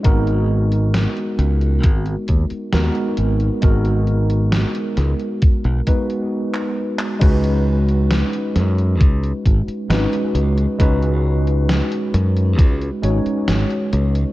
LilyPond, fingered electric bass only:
\new Staff \with { instrumentName = "Fingered electric bass" } { \clef bass \time 4/4 \key cis \dorian \tempo 4 = 67 gis,,4 r8 cis,8 gis,,16 r16 dis,16 r16 dis,16 r16 gis,,16 r16 | gis,,4 r8 cis,16 r8 b,,16 r4. | cis,4 r8 fis,8 cis,16 r16 gis,,16 r16 gis,,16 r16 cis,16 r16 | cis,4 r8 fis,8 cis,16 r16 gis,,16 r16 gis,,16 r16 cis,16 r16 | }